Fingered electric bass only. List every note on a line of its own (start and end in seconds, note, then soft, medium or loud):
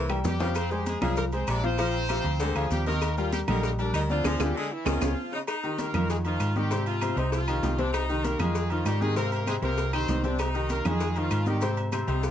0.00 0.21 C2 loud
0.24 0.96 F2 medium
1.01 1.44 C2 loud
1.47 2.19 A#1 medium
2.24 2.53 D2 loud
2.55 2.70 D2 medium
2.70 3.42 D#2 loud
3.47 3.90 A#1 loud
3.93 4.22 D2 medium
4.24 4.36 D2 loud
4.39 4.51 D2 loud
4.85 4.97 C#2 loud
5.01 5.13 C#2 loud
5.94 6.37 F2 loud
6.40 7.11 G#2 medium
7.16 7.59 C2 loud
7.62 8.34 C2 loud
8.39 8.82 F2 loud
8.85 9.57 G#2 medium
9.62 10.05 C2 loud
10.08 10.79 C2 medium
10.85 11.28 F2 loud
11.31 12.02 G#2 loud
12.07 12.31 C2 loud